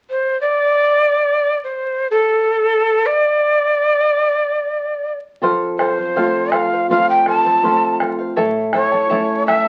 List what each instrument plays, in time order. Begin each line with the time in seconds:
0.10 quena C5
0.41 quena D5
1.64 quena C5
2.11 quena A4
3.06 quena D5
5.42 nylon-string guitar F2, charango A4 C5 F5, bombo low
5.78 charango A4 C5 F5, quena C5, bombo rim, bombo low
5.97 charango C5 F5, bombo low
6.16 nylon-string guitar A3 C4 F4, charango A4 C5 F5, bombo low
6.52 charango A4 C5 F5, quena F5, bombo rim, bombo low
6.71 charango C5 F5
6.89 nylon-string guitar A3 C4 F4, charango A4 C5 F5, quena F5, bombo low
7.10 quena G5
7.26 charango A4 C5 F5, quena A5, bombo rim, bombo low
7.45 charango C5 F5, bombo low
7.63 nylon-string guitar A3 C4 F4, charango A4 C5 F5, bombo low
8.00 charango A4 C5 F5, bombo rim, bombo low
8.19 charango C5 F5
8.36 nylon-string guitar A2, charango E4 A4 C#5 E5 A5, bombo low
8.73 charango E4 A4 E5 A5, quena C#5, bombo rim, bombo low
8.92 charango E4 A4 A5, bombo low
9.09 nylon-string guitar A3 C#4 E4, charango E4 A4 C#5 E5 A5, bombo low
9.47 charango E4 A4 E5 A5, quena E5, bombo rim, bombo low
9.65 charango A5